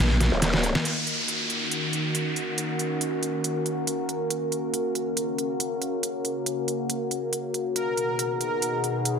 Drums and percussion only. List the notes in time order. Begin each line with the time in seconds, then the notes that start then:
0.20 snare, closed hi-hat
0.42 snare, closed hi-hat
0.54 snare
0.64 open hi-hat
0.75 snare
0.85 closed hi-hat
1.07 closed hi-hat
1.28 closed hi-hat
1.50 closed hi-hat
1.71 closed hi-hat
1.93 closed hi-hat
2.15 closed hi-hat
2.36 closed hi-hat
2.58 closed hi-hat
2.79 closed hi-hat
3.01 closed hi-hat
3.23 closed hi-hat
3.44 closed hi-hat
3.66 closed hi-hat
3.87 closed hi-hat
4.09 closed hi-hat
4.30 closed hi-hat
4.52 closed hi-hat
4.74 closed hi-hat
4.95 closed hi-hat
5.17 closed hi-hat
5.38 closed hi-hat
5.60 closed hi-hat
5.82 closed hi-hat
6.03 closed hi-hat
6.25 closed hi-hat
6.46 closed hi-hat
6.68 closed hi-hat
6.90 closed hi-hat
7.11 closed hi-hat
7.33 closed hi-hat
7.54 closed hi-hat
7.76 closed hi-hat
7.97 closed hi-hat
8.19 closed hi-hat
8.41 closed hi-hat
8.62 closed hi-hat
8.84 closed hi-hat
9.05 closed hi-hat